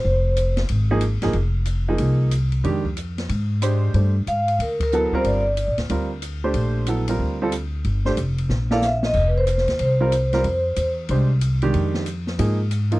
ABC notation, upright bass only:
X:1
M:4/4
L:1/8
Q:"Swing" 1/4=185
K:Fdor
V:1 name="Upright bass" clef=bass
F,,,4 A,,,3 G,,, | F,,,4 C,,4 | F,,4 A,,4 | G,,2 A,,2 D,,3 z |
G,,,2- (3G,,, B,,, D,, D,,4 | B,,,4 D,,4 | G,,,2 F,,,2 B,,,4 | F,,,3 E,, C,,4 |
F,,2 =E,,2 C,,4 | F,,4 A,,4 |]